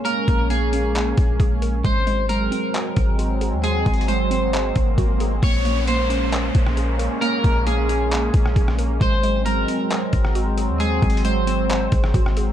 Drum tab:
HH |x-----x-----x-----x-----x-----x-----x-----x-----|x-----x-----x-----x-----x-----x-----x-----x-----|x-----x-x-x-x-----x-----x-----x-----x-----x-----|x-----x-----x-----x-----x-----x-----x-----x-----|
CP |------------------------x-----------------------|------------------------x-----------------------|------------------------x-----------------------|------------------------x-----------------------|
SD |------------------------------------------------|------------------------------------------------|------------------------------------------------|---------------------------------r--------------|
BD |------o-----------------------o-----o-----------|o-----------------------------o-----------------|------o-----------------------o-----o-----------|o-----------------------------o-----------------|

HH |x-----x-----x-----x-----x-----x-----x-----x-----|x-----x-----x-----x-----x-----x-----x-----x-----|x-----x-x-x-x-----x-----x-----x-----x-----x-----|
CP |------------------------x-----------------------|------------------------x-----------------------|------------------------x-----------------------|
SD |---------------------------------r-----r--------|---------------------------------r--------------|---------------------------------r-----r--------|
BD |------o-----------------------o-----o-----------|o-----------------------------o-----------------|------o-----------------------o-----o-----------|